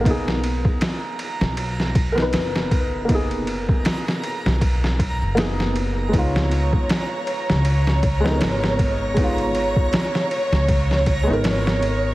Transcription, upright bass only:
X:1
M:4/4
L:1/16
Q:"Swing 16ths" 1/4=79
K:G#dor
V:1 name="Upright bass" clef=bass
B,,,3 z4 B,,,4- B,,, F,,,4- | F,,,4 z3 B,,,4 F,,,4- F,,, | C,,3 z4 C,,4- C,, G,,,4- | G,,,4 z3 C,,4 G,,,4- G,,, |]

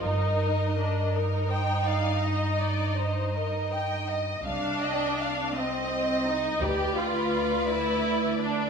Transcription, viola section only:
X:1
M:12/8
L:1/8
Q:3/8=55
K:Eb
V:1 name="Viola section"
E2 D E8 z | D3 C2 E G F2 _F2 D |]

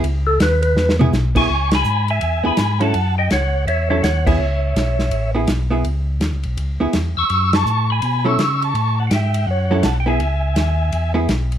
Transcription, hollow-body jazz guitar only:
X:1
M:4/4
L:1/8
Q:"Swing" 1/4=165
K:C#m
V:1 name="Hollow-body jazz guitar"
z4 z [B,EG] z [B,EG] | z4 z [B,EG] z [F,CEA] | z4 z [F,CEA] z [B,EG] | z4 z [B,EG] z [B,EG] |
z4 z [B,EG] z2 | z4 z [F,CEA] z2 | z4 z [F,CEA] z [B,EG] | z4 z [B,EG] z2 |]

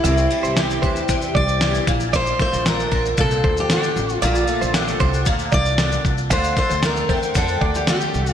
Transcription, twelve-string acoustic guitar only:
X:1
M:4/4
L:1/8
Q:1/4=115
K:Bblyd
V:1 name="Twelve-string acoustic guitar" clef=bass
[C,E,G,D] G, E, D C,2 E, B,, | B,, A, D, D B,,2 D,2 | B,, A, D, D B,,2 D,2 | D, A, A, C D,2 A,2 |]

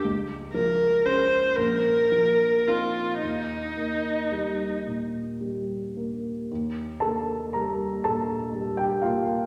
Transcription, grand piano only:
X:1
M:6/8
L:1/16
Q:3/8=38
K:Eblyd
V:1 name="Grand piano"
z12 | z12 | z2 [Aa]2 [Bb]2 [Aa]3 [Gg] [Ff]2 |]
V:2 name="Grand piano" clef=bass
_D,,2 F,2 [_D_A]2 B,,,2 F,2 [CE]2 | E,,2 B,2 G,2 B,,2 G,2 B,2 | E,,2 B,2 G,2 B,,2 G,2 B,2 |]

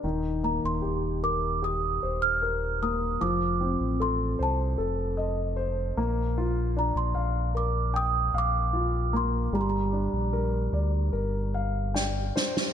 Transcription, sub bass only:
X:1
M:4/4
L:1/16
Q:1/4=76
K:Eb
V:1 name="Sub bass" clef=bass
E,,,3 E,,, E,,,6 E,,,6 | F,,,3 =A,,,3 C,,2 F,,,6 B,,,2- | B,,,3 B,,, B,,,6 B,,,6 | G,,,3 B,,,3 D,,2 G,,,6 z2 |]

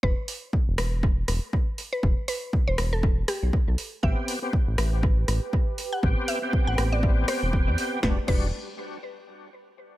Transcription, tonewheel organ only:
X:1
M:4/4
L:1/16
Q:"Swing 16ths" 1/4=120
K:Em
V:1 name="Tonewheel organ"
z16 | z16 | [B,CG]3 [B,CG] z12 | [B,CG]3 [B,CG]12- [B,CG] |
[G,DF] z [G,DF]2 z12 |]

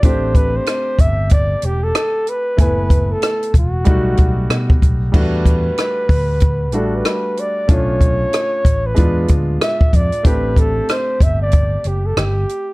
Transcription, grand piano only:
X:1
M:4/4
L:1/8
Q:"Swing 16ths" 1/4=94
K:Amix
V:1 name="Grand piano"
[A,=CDG]8 | [A,B,E^g]4 [=G,A,^DF]4 | [G,A,DF]4- [G,A,DF] [G,A,DF]3 | [A,CD=F]4 [^G,B,DF]4 |
[A,=CDG]8 |]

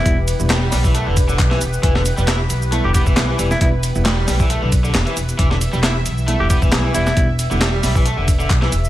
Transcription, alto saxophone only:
X:1
M:4/4
L:1/16
Q:"Swing 16ths" 1/4=135
K:Em
V:1 name="Alto saxophone"
E z12 z3 | z8 z G G z4 E | E z12 z3 | z8 z G G z3 E2- |
E z12 z3 |]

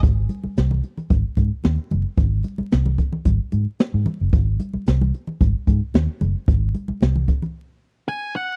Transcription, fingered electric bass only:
X:1
M:4/4
L:1/16
Q:1/4=112
K:Abmix
V:1 name="Fingered electric bass" clef=bass
A,,,2 z2 C,,2 z2 A,,, z A,, z E,, z G,,, z | A,,,2 z2 C,,2 z2 A,,, z A,, z2 A,, z G,,, | A,,,2 z2 C,,2 z2 A,,, z A,, z E,, z G,,, z | A,,,2 z2 C,,2 z8 z2 |]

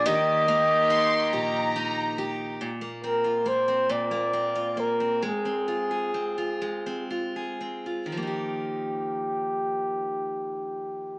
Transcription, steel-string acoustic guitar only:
X:1
M:6/8
L:1/16
Q:3/8=44
K:Eb
V:1 name="Steel-string acoustic guitar"
[E,G]2 B,2 E2 G2 E2 G2 | B,, B, C F B, C B,, B, C F B, C | A, C F A C F A, C F A C F | [E,F,B,EG]12 |]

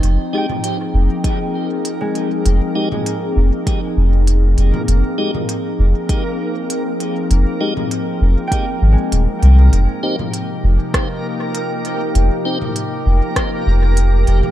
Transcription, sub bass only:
X:1
M:4/4
L:1/8
Q:"Swing 16ths" 1/4=99
K:Fm
V:1 name="Sub bass" clef=bass
F,,, z2 F,,, z4 | F,,, z2 F,,, z F,,,2 F,,, | F,,, z2 F,,, z4 | F,,, z2 F,,, z A,,, E,,, C,, |
F,,, z2 F,,, z4 | F,,, z2 F,,, z F,,,2 F,,, |]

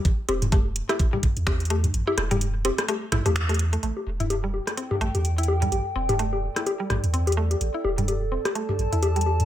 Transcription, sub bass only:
X:1
M:4/4
L:1/16
Q:"Swing 16ths" 1/4=127
K:C
V:1 name="Sub bass" clef=bass
A,,, z E,,,4 z4 A,,, E,,4 z | A,,, z E,,,4 z4 A,,, E,,4 z | A,,, z E,,,4 z4 A,,, E,,4 z | A,,, z E,,,4 z4 A,,, E,,4 z |
A,,, z E,,,4 z4 A,,, E,,4 z |]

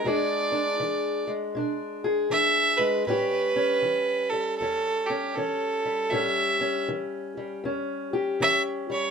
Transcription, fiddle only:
X:1
M:4/4
L:1/8
Q:"Swing" 1/4=79
K:A
V:1 name="Fiddle"
d3 z3 e B | B3 A A =G A2 | e2 z4 e c |]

